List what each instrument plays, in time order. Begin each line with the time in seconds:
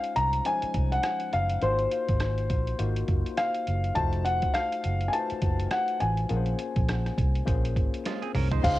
Already playing: tine electric piano G#3 C#4 D#4 F4 C5, grand piano F5
0.04 closed hi-hat
0.16 fingered electric bass C2, grand piano A#5, closed hi-hat
0.33 closed hi-hat
0.45 tine electric piano F3 G#3 C#4 D#4 C5, grand piano G#5, closed hi-hat
0.62 muted fingered electric bass stroke, closed hi-hat
0.74 fingered electric bass C2, kick, closed hi-hat
0.92 grand piano F#5, closed hi-hat
1.03 cross-stick, closed hi-hat
1.20 closed hi-hat
1.33 fingered electric bass F#1, grand piano F5, closed hi-hat
1.50 closed hi-hat
1.62 fingered electric bass G#1, tine electric piano A#3 D#4 F4 F#4 C5, grand piano C5, closed hi-hat
1.79 closed hi-hat
1.91 closed hi-hat
2.08 fingered electric bass G#1, kick, closed hi-hat
2.20 cross-stick, closed hi-hat
2.38 closed hi-hat
2.50 fingered electric bass A#1, kick, closed hi-hat
2.67 closed hi-hat
2.79 fingered electric bass G#1, tine electric piano A#3 D#4 F4 F#4 C5, closed hi-hat
2.96 closed hi-hat
3.08 fingered electric bass F#1, kick, closed hi-hat
3.26 closed hi-hat
3.37 grand piano F5, cross-stick, closed hi-hat
3.54 closed hi-hat
3.67 fingered electric bass F#1, closed hi-hat
3.84 closed hi-hat
3.95 fingered electric bass F1, tine electric piano A3 D#4 F4 F#4 C5, grand piano A5, kick, closed hi-hat
4.13 closed hi-hat
4.25 grand piano F#5, closed hi-hat
4.42 kick, closed hi-hat
4.54 grand piano F5, cross-stick, closed hi-hat
4.72 closed hi-hat
4.84 fingered electric bass F#1, closed hi-hat
5.01 closed hi-hat
5.08 tine electric piano A3, grand piano G#5
5.12 tine electric piano D#4 F4 F#4 B4, grand piano A5, closed hi-hat
5.19 tine electric piano C5
5.30 muted fingered electric bass stroke, closed hi-hat
5.42 fingered electric bass F#1, kick, closed hi-hat
5.59 closed hi-hat
5.71 grand piano F#5, cross-stick, closed hi-hat
5.88 closed hi-hat
6.00 fingered electric bass A1, grand piano G#5, closed hi-hat
6.17 closed hi-hat
6.29 fingered electric bass A#1, tine electric piano A#3 C#4 F4 G#4 A#4, closed hi-hat
6.36 tine electric piano C5
6.46 closed hi-hat
6.59 closed hi-hat
6.76 fingered electric bass A#1, kick, closed hi-hat
6.89 cross-stick, closed hi-hat
7.06 cross-stick, closed hi-hat
7.18 fingered electric bass C2, kick, closed hi-hat
7.35 closed hi-hat
7.45 fingered electric bass A#1, tine electric piano A#3 C#4 F4 G#4 C5, kick, closed hi-hat
7.65 closed hi-hat
7.76 fingered electric bass G#1, kick, closed hi-hat
7.94 closed hi-hat
8.05 clean electric guitar G#3 F4, snare, closed hi-hat
8.22 clean electric guitar C4 G#4, closed hi-hat
8.35 fingered electric bass C2, clean electric guitar C#4 A#4, mid tom, open hi-hat
8.51 clean electric guitar D#4 C5, closed hi-hat, floor tom
8.63 fingered electric bass C#2, tine electric piano C#4 D#4 F4 G#4 C5, string section C5 C6, grand piano F5, kick, closed hi-hat, crash